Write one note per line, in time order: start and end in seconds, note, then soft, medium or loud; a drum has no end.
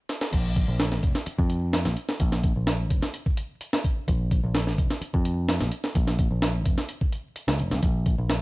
0.09 snare medium
0.21 snare medium
0.33 0.64 A#1 loud
0.33 kick loud
0.33 closed hi-hat medium
0.33 crash medium
0.56 kick medium
0.56 closed hi-hat medium
0.68 1.03 A#1 medium
0.80 snare loud
0.80 closed hi-hat medium
0.92 snare soft
1.03 1.13 F1 medium
1.03 kick loud
1.03 closed hi-hat medium
1.15 snare soft
1.26 muted picked electric bass stroke soft
1.26 closed hi-hat medium
1.38 1.87 F2 medium
1.38 kick loud
1.50 closed hi-hat medium
1.73 snare loud
1.73 closed hi-hat medium
1.85 1.94 A#1 medium
1.85 snare medium
1.97 closed hi-hat medium
2.09 snare medium
2.20 2.51 A#1 loud
2.20 kick loud
2.20 closed hi-hat medium
2.32 snare soft
2.43 kick medium
2.43 closed hi-hat medium
2.56 2.90 A#1 medium
2.67 snare loud
2.67 closed hi-hat medium
2.90 3.00 F1 medium
2.90 kick medium
2.90 closed hi-hat medium
3.02 snare medium
3.14 closed hi-hat medium
3.26 kick medium
3.37 closed hi-hat medium
3.61 closed hi-hat loud
3.73 snare loud
3.84 kick loud
3.84 closed hi-hat medium
4.08 4.39 A#1 loud
4.08 kick loud
4.08 closed hi-hat medium
4.31 kick loud
4.31 closed hi-hat medium
4.44 4.78 A#1 medium
4.55 snare loud
4.55 closed hi-hat medium
4.67 snare soft
4.78 4.88 F1 medium
4.78 kick medium
4.78 closed hi-hat medium
4.91 snare soft
5.01 muted picked electric bass stroke soft
5.01 closed hi-hat medium
5.14 5.62 F2 medium
5.14 kick loud
5.25 closed hi-hat medium
5.48 snare loud
5.48 closed hi-hat medium
5.60 5.69 A#1 medium
5.60 snare medium
5.72 closed hi-hat medium
5.84 snare soft
5.95 6.27 A#1 loud
5.95 kick loud
5.95 closed hi-hat medium
6.08 snare soft
6.19 kick loud
6.19 closed hi-hat medium
6.31 6.66 A#1 medium
6.42 snare loud
6.42 closed hi-hat medium
6.66 6.75 F1 medium
6.66 kick loud
6.66 closed hi-hat medium
6.78 snare medium
6.89 closed hi-hat medium
7.01 kick medium
7.12 closed hi-hat medium
7.36 closed hi-hat medium
7.48 7.61 C#2 loud
7.48 snare loud
7.59 7.73 F1 medium
7.59 closed hi-hat medium
7.71 7.80 C#2 medium
7.71 snare soft
7.83 8.14 A#1 loud
7.83 kick loud
7.83 closed hi-hat medium
8.06 kick loud
8.06 closed hi-hat medium
8.18 8.42 A#1 medium
8.30 snare loud
8.30 closed hi-hat medium